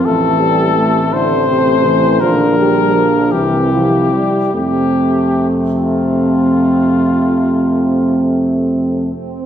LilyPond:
<<
  \new Staff \with { instrumentName = "Cornet" } { \time 12/8 \key f \major \tempo 4. = 49 a'4. c''4. bes'4. g'4. | g'4 r8 f'2. r4. | }
  \new Staff \with { instrumentName = "French horn section" } { \time 12/8 \key f \major c'4. c'4. d'4. e'4. | c'1~ c'4. c'8 | }
  \new Staff \with { instrumentName = "Trombone section" } { \clef bass \time 12/8 \key f \major a8 g8 a2 f8 g8 f8 e8 f8 g8 | a1~ a4. r8 | }
  \new Staff \with { instrumentName = "Euphonium" } { \clef bass \time 12/8 \key f \major e4. d8 c8 e8 d4. c4 r8 | c1~ c4. r8 | }
  \new Staff \with { instrumentName = "Tuba" } { \clef bass \time 12/8 \key f \major a,,2. bes,,4. c,4 r8 | f,1~ f,4. r8 | }
>>